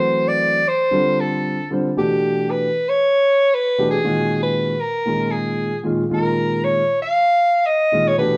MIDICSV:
0, 0, Header, 1, 3, 480
1, 0, Start_track
1, 0, Tempo, 519031
1, 1811, Time_signature, 4, 2, 24, 8
1, 7742, End_track
2, 0, Start_track
2, 0, Title_t, "Soprano saxophone"
2, 0, Program_c, 0, 64
2, 0, Note_on_c, 0, 72, 83
2, 257, Note_on_c, 0, 74, 80
2, 271, Note_off_c, 0, 72, 0
2, 628, Note_on_c, 0, 72, 82
2, 642, Note_off_c, 0, 74, 0
2, 1115, Note_on_c, 0, 69, 69
2, 1129, Note_off_c, 0, 72, 0
2, 1583, Note_off_c, 0, 69, 0
2, 1832, Note_on_c, 0, 67, 78
2, 2315, Note_on_c, 0, 71, 89
2, 2329, Note_off_c, 0, 67, 0
2, 2674, Note_on_c, 0, 73, 99
2, 2688, Note_off_c, 0, 71, 0
2, 3274, Note_on_c, 0, 71, 97
2, 3288, Note_off_c, 0, 73, 0
2, 3608, Note_off_c, 0, 71, 0
2, 3613, Note_on_c, 0, 68, 85
2, 4061, Note_off_c, 0, 68, 0
2, 4093, Note_on_c, 0, 71, 77
2, 4443, Note_on_c, 0, 70, 88
2, 4457, Note_off_c, 0, 71, 0
2, 4910, Note_on_c, 0, 68, 69
2, 4924, Note_off_c, 0, 70, 0
2, 5401, Note_off_c, 0, 68, 0
2, 5673, Note_on_c, 0, 70, 81
2, 6142, Note_on_c, 0, 73, 81
2, 6155, Note_off_c, 0, 70, 0
2, 6487, Note_off_c, 0, 73, 0
2, 6492, Note_on_c, 0, 77, 90
2, 7083, Note_on_c, 0, 75, 82
2, 7097, Note_off_c, 0, 77, 0
2, 7470, Note_on_c, 0, 73, 85
2, 7484, Note_off_c, 0, 75, 0
2, 7564, Note_off_c, 0, 73, 0
2, 7570, Note_on_c, 0, 71, 84
2, 7742, Note_off_c, 0, 71, 0
2, 7742, End_track
3, 0, Start_track
3, 0, Title_t, "Grand piano"
3, 0, Program_c, 1, 0
3, 0, Note_on_c, 1, 52, 61
3, 0, Note_on_c, 1, 54, 53
3, 0, Note_on_c, 1, 57, 60
3, 0, Note_on_c, 1, 60, 55
3, 0, Note_on_c, 1, 66, 67
3, 525, Note_off_c, 1, 52, 0
3, 525, Note_off_c, 1, 54, 0
3, 530, Note_off_c, 1, 57, 0
3, 530, Note_off_c, 1, 60, 0
3, 535, Note_off_c, 1, 66, 0
3, 842, Note_on_c, 1, 50, 67
3, 846, Note_on_c, 1, 55, 61
3, 850, Note_on_c, 1, 60, 61
3, 855, Note_on_c, 1, 65, 59
3, 856, Note_on_c, 1, 69, 65
3, 1425, Note_off_c, 1, 50, 0
3, 1427, Note_off_c, 1, 55, 0
3, 1429, Note_off_c, 1, 60, 0
3, 1432, Note_off_c, 1, 65, 0
3, 1432, Note_off_c, 1, 69, 0
3, 1579, Note_on_c, 1, 50, 67
3, 1584, Note_on_c, 1, 55, 59
3, 1587, Note_on_c, 1, 60, 58
3, 1592, Note_on_c, 1, 65, 54
3, 1599, Note_on_c, 1, 72, 73
3, 1735, Note_off_c, 1, 50, 0
3, 1738, Note_off_c, 1, 55, 0
3, 1739, Note_off_c, 1, 60, 0
3, 1742, Note_off_c, 1, 65, 0
3, 1745, Note_off_c, 1, 72, 0
3, 1819, Note_on_c, 1, 47, 66
3, 1823, Note_on_c, 1, 52, 57
3, 1823, Note_on_c, 1, 57, 57
3, 1829, Note_on_c, 1, 67, 67
3, 1833, Note_on_c, 1, 62, 57
3, 2451, Note_off_c, 1, 47, 0
3, 2453, Note_off_c, 1, 52, 0
3, 2453, Note_off_c, 1, 57, 0
3, 2456, Note_off_c, 1, 67, 0
3, 2458, Note_off_c, 1, 62, 0
3, 3499, Note_on_c, 1, 47, 66
3, 3501, Note_on_c, 1, 57, 56
3, 3502, Note_on_c, 1, 52, 57
3, 3505, Note_on_c, 1, 62, 56
3, 3509, Note_on_c, 1, 67, 74
3, 3656, Note_off_c, 1, 47, 0
3, 3657, Note_off_c, 1, 52, 0
3, 3657, Note_off_c, 1, 57, 0
3, 3659, Note_off_c, 1, 62, 0
3, 3661, Note_off_c, 1, 67, 0
3, 3736, Note_on_c, 1, 46, 66
3, 3740, Note_on_c, 1, 51, 64
3, 3744, Note_on_c, 1, 56, 58
3, 3745, Note_on_c, 1, 61, 61
3, 3748, Note_on_c, 1, 66, 71
3, 4370, Note_off_c, 1, 46, 0
3, 4372, Note_off_c, 1, 51, 0
3, 4374, Note_off_c, 1, 56, 0
3, 4374, Note_off_c, 1, 61, 0
3, 4376, Note_off_c, 1, 66, 0
3, 4675, Note_on_c, 1, 46, 61
3, 4684, Note_on_c, 1, 51, 51
3, 4688, Note_on_c, 1, 56, 56
3, 4690, Note_on_c, 1, 61, 57
3, 4692, Note_on_c, 1, 65, 66
3, 5261, Note_off_c, 1, 46, 0
3, 5266, Note_off_c, 1, 51, 0
3, 5268, Note_off_c, 1, 56, 0
3, 5269, Note_off_c, 1, 61, 0
3, 5270, Note_off_c, 1, 65, 0
3, 5396, Note_on_c, 1, 46, 67
3, 5403, Note_on_c, 1, 51, 56
3, 5405, Note_on_c, 1, 56, 55
3, 5412, Note_on_c, 1, 61, 57
3, 5417, Note_on_c, 1, 65, 72
3, 5564, Note_off_c, 1, 46, 0
3, 5568, Note_off_c, 1, 51, 0
3, 5569, Note_off_c, 1, 56, 0
3, 5572, Note_off_c, 1, 61, 0
3, 5574, Note_off_c, 1, 65, 0
3, 5639, Note_on_c, 1, 46, 64
3, 5641, Note_on_c, 1, 51, 55
3, 5646, Note_on_c, 1, 56, 57
3, 5653, Note_on_c, 1, 65, 65
3, 5654, Note_on_c, 1, 61, 54
3, 6280, Note_off_c, 1, 46, 0
3, 6281, Note_off_c, 1, 51, 0
3, 6283, Note_off_c, 1, 56, 0
3, 6287, Note_off_c, 1, 61, 0
3, 6287, Note_off_c, 1, 65, 0
3, 7323, Note_on_c, 1, 46, 63
3, 7331, Note_on_c, 1, 56, 59
3, 7332, Note_on_c, 1, 51, 58
3, 7336, Note_on_c, 1, 61, 57
3, 7338, Note_on_c, 1, 65, 71
3, 7485, Note_off_c, 1, 46, 0
3, 7489, Note_off_c, 1, 56, 0
3, 7490, Note_off_c, 1, 51, 0
3, 7492, Note_off_c, 1, 61, 0
3, 7493, Note_off_c, 1, 65, 0
3, 7561, Note_on_c, 1, 47, 69
3, 7571, Note_on_c, 1, 52, 58
3, 7572, Note_on_c, 1, 57, 60
3, 7578, Note_on_c, 1, 62, 55
3, 7583, Note_on_c, 1, 67, 66
3, 7742, Note_off_c, 1, 47, 0
3, 7742, Note_off_c, 1, 52, 0
3, 7742, Note_off_c, 1, 57, 0
3, 7742, Note_off_c, 1, 62, 0
3, 7742, Note_off_c, 1, 67, 0
3, 7742, End_track
0, 0, End_of_file